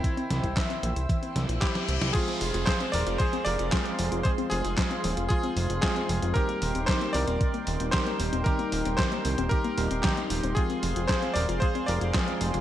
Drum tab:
CC |----------------|x---------------|----------------|----------------|
HH |xxxxxxxxxxxxxxxx|xxoxxxoxxxoxxxox|xxoxxxoxxxoxxxox|xxoxxxoxxxoxxxox|
CP |----x-------x---|----x-------x---|----x-------x---|----x-------x---|
SD |--o-o-----o-oo-o|----o-------o---|----o-------o---|----o-------o---|
BD |o--oo---o---o---|o---o---o---o---|o---o---o---o---|o---o---o---o---|

CC |----------------|----------------|
HH |xxoxxxoxxxoxxxox|xxoxxxoxxxoxxxox|
CP |----x-------x---|----x-------x---|
SD |----o-------o---|----o-------o---|
BD |o---o---o---o---|o---o---o---o---|